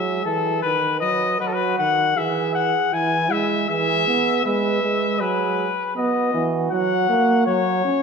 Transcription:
Already playing: euphonium F#3, flugelhorn G#4, trumpet E5
0.25 euphonium E3, trumpet A4
0.62 euphonium D#3, trumpet B4, flugelhorn B4
1.00 euphonium F#3, trumpet D#5
1.40 euphonium F#3, flugelhorn F#4, trumpet B4
1.47 trumpet A4
1.54 trumpet B4
1.78 euphonium D#3, trumpet F#5
2.16 euphonium E3, flugelhorn G#4, trumpet E5
2.55 trumpet F#5
2.93 euphonium E3, flugelhorn E4, trumpet G#5
3.31 euphonium G#3, trumpet E5
3.69 euphonium E3, flugelhorn G#4, trumpet E5
4.07 euphonium B3
4.45 euphonium G#3, flugelhorn B4, trumpet E5
4.83 euphonium G#3
5.20 euphonium F#3, flugelhorn G#4, trumpet B4
5.96 euphonium B3, flugelhorn F#4, trumpet D#5
6.34 euphonium E3
6.71 euphonium F#3, trumpet F#5
7.09 euphonium A#3
7.46 euphonium F#3, trumpet C#5
7.85 euphonium C#4

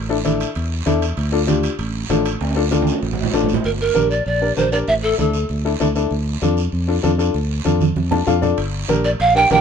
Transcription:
Already playing: fingered electric bass A1
0.09 upright piano D4 E4 A4
0.25 upright piano D4 E4 A4, high conga, high timbale, short guiro
0.40 high timbale, short guiro
0.55 fingered electric bass E2, high timbale, long guiro
0.86 fingered electric bass E2, upright piano D4 E4 A4, high conga, high timbale, short guiro
1.02 high timbale, short guiro
1.17 fingered electric bass D2, high timbale, long guiro
1.32 upright piano D4 F4 A4
1.47 upright piano D4 F4 G4, high conga, high timbale, short guiro
1.63 high timbale, short guiro
1.79 fingered electric bass A1, high conga, high timbale, long guiro
2.10 fingered electric bass A1, upright piano D4 F4 A4, high conga, high timbale, low timbale, short guiro
2.25 high timbale, short guiro
2.41 fingered electric bass D2, high timbale, long guiro
2.51 high timbale
2.55 upright piano D4 F4 A4
2.71 upright piano D4 F4 A4, high conga, high timbale, short guiro
2.82 high conga, high timbale
2.87 short guiro
2.92 low timbale
3.03 fingered electric bass A1, long guiro
3.13 low conga, low timbale
3.23 low conga, low timbale
3.33 fingered electric bass A1, upright piano D4 F4 A4, low timbale, short guiro
3.44 low conga, low timbale
3.49 short guiro
3.54 low conga, low timbale
3.64 fingered electric bass G1, pan flute A#4, high conga, long guiro
3.81 pan flute A#4
3.94 fingered electric bass A#1, upright piano D4 G4 A#4, high conga, short guiro
4.11 pan flute D5, short guiro
4.26 fingered electric bass A#1, pan flute D5, long guiro
4.41 upright piano D4 G4 A#4
4.57 fingered electric bass A#1, upright piano D4 G4 A#4, pan flute C5, high conga, short guiro
4.72 upright piano D4 G4 A#4, pan flute D5, short guiro
4.88 fingered electric bass A1, pan flute E5, high conga, long guiro
5.03 pan flute A4
5.18 fingered electric bass D2, upright piano D4 E4 A4, pan flute A4, high conga, short guiro
5.33 short guiro
5.49 fingered electric bass D2, long guiro
5.65 upright piano D4 E4 A4
5.80 fingered electric bass D2, upright piano D4 E4 A4, high conga, short guiro
5.95 upright piano D4 E4 A4, short guiro
6.11 fingered electric bass D2, high conga, long guiro
6.42 fingered electric bass F2, upright piano D4 F4 A4, high conga, short guiro
6.57 short guiro
6.72 fingered electric bass F2, high conga, long guiro
6.88 upright piano D4 F4 A4
7.03 fingered electric bass F2, upright piano D4 F4 A4, high conga, short guiro
7.18 upright piano D4 F4 A4, short guiro
7.34 fingered electric bass D2, high conga, long guiro
7.65 fingered electric bass F2, upright piano D4 F4 A4, high conga, short guiro
7.81 high conga, short guiro
7.96 fingered electric bass F2, high conga, long guiro
8.11 upright piano D4 F4 A4 A5, low conga
8.27 fingered electric bass F2, upright piano D4 F4 A4 F5, low conga, short guiro
8.41 upright piano D4 F4 A4 D5, low conga, short guiro
8.58 fingered electric bass G1, high conga, high timbale, long guiro
8.88 fingered electric bass A#1, upright piano D4 G4 A#4, high conga, high timbale, short guiro
9.04 pan flute D5, high timbale, short guiro
9.20 fingered electric bass A#1, pan flute F5, high conga, high timbale, long guiro
9.35 upright piano D4 G4 A#4, pan flute G5
9.50 fingered electric bass A#1, upright piano D4 G4 A#4, pan flute G5, high conga, high timbale, low timbale, short guiro

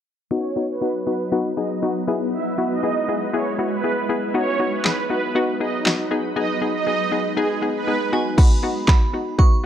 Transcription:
0.31 ambient pad F#3 B3 D#4 B4, synth pluck B3 D#4 F#4, supersaw synth C#5
0.56 synth pluck B3 D#4 F#4
0.69 supersaw synth B4
0.81 synth pluck B3 D#4 F#4
1.07 synth pluck B3 D#4 F#4, supersaw synth B4
1.32 synth pluck B3 D#4 F#4
1.57 synth pluck B3 D#4 G#4, supersaw synth D#5
1.82 synth pluck B3 D#4 F#4
2.07 ambient pad G#3 E4, synth pluck B3 E4 G#4
2.33 supersaw synth E5
2.58 synth pluck B3 E4 F#4
2.70 supersaw synth D#5
2.83 synth pluck B3 E4 G#4
3.08 synth pluck B3 E4 G#4
3.33 synth pluck B3 E4 G#4, supersaw synth C#5
3.58 synth pluck B3 E4 F#4
3.71 supersaw synth B4
3.84 synth pluck B3 E4 G#4
4.09 synth pluck B3 E4 G#4
4.34 ambient pad F#3 D#4 B4, synth pluck B3 D#4 F#4, supersaw synth C#5
4.59 synth pluck B3 D#4 F#4
4.72 supersaw synth B4
4.85 synth pluck B3 D#4 G#4, snare, clap
5.10 synth pluck B3 D#4 F#4, supersaw synth B4
5.35 synth pluck B3 D#4 F#4
5.60 synth pluck B3 D#4 G#4, supersaw synth D#5
5.86 synth pluck B3 D#4 F#4, snare, clap
6.11 synth pluck B3 D#4 G#4
6.36 ambient pad G#3, synth pluck B3 D#4 G#4, supersaw synth D#5
6.61 synth pluck B3 D#4 G#4
6.74 supersaw synth D#5
6.87 synth pluck B3 D#4 G#4
7.12 synth pluck B3 D#4 G#4
7.37 synth pluck B3 D#4 G#4, supersaw synth G#4
7.62 synth pluck B3 D#4 G#4
7.75 supersaw synth B4
7.87 synth pluck B3 D#4 G#4
8.13 synth pluck B3 D#4 F#4, synth bell G#5
8.38 synth pluck B3 D#4 F#4, synth bell B5, kick, crash
8.63 synth pluck B3 D#4 F#4
8.88 synth pluck B3 D#4 F#4, synth bell B5, kick, snare, clap
9.13 synth pluck B3 D#4 F#4
9.38 synth pluck B3 D#4 F#4, synth bell C#6, kick

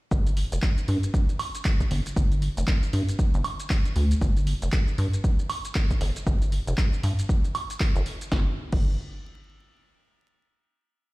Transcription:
0.11 analog synth bass G1, kick, shaker
0.26 closed hi-hat, shaker
0.37 open hi-hat
0.52 analog synth bass F1, closed hi-hat, shaker
0.62 kick, clap, shaker
0.78 closed hi-hat, shaker
0.88 analog synth bass G2, open hi-hat
1.03 closed hi-hat, shaker
1.14 kick, shaker
1.29 closed hi-hat, shaker
1.39 open hi-hat, high woodblock
1.55 closed hi-hat, shaker
1.65 kick, clap, open hi-hat, shaker
1.80 kick, closed hi-hat, shaker
1.91 analog synth bass G1, open hi-hat
2.06 closed hi-hat, shaker
2.16 analog synth bass G1, kick, shaker
2.32 closed hi-hat, shaker
2.42 open hi-hat
2.57 analog synth bass F1, closed hi-hat, shaker
2.67 kick, clap, shaker
2.83 closed hi-hat, shaker
2.93 analog synth bass G2, open hi-hat
3.09 closed hi-hat, shaker
3.19 kick, shaker
3.34 analog synth bass G1, closed hi-hat, shaker
3.44 open hi-hat, high woodblock
3.60 closed hi-hat, shaker
3.70 kick, clap, open hi-hat, shaker
3.85 closed hi-hat, shaker
3.96 analog synth bass D2, open hi-hat
4.11 closed hi-hat, shaker
4.21 analog synth bass G1, kick, shaker
4.37 closed hi-hat, shaker
4.47 open hi-hat
4.62 analog synth bass F1, closed hi-hat, shaker
4.72 kick, clap, shaker
4.88 closed hi-hat, shaker
4.98 analog synth bass G2, open hi-hat
5.13 closed hi-hat, shaker
5.24 kick, shaker
5.39 closed hi-hat, shaker
5.50 open hi-hat, high woodblock
5.65 closed hi-hat, shaker
5.75 kick, clap, open hi-hat, shaker
5.90 kick, closed hi-hat, shaker
6.01 analog synth bass G1, open hi-hat
6.16 closed hi-hat, shaker
6.27 analog synth bass G1, kick, shaker
6.42 closed hi-hat, shaker
6.52 open hi-hat
6.67 analog synth bass F1, closed hi-hat, shaker
6.77 kick, clap, shaker
6.93 closed hi-hat, shaker
7.03 analog synth bass G2, open hi-hat
7.19 closed hi-hat, shaker
7.29 kick, shaker
7.44 closed hi-hat, shaker
7.55 open hi-hat, high woodblock
7.70 closed hi-hat, shaker
7.80 kick, clap, open hi-hat, shaker
7.96 analog synth bass G1, closed hi-hat, shaker
8.06 open hi-hat
8.21 closed hi-hat, shaker
8.32 analog synth bass G1, kick, snare
8.72 analog synth bass G1, kick, crash

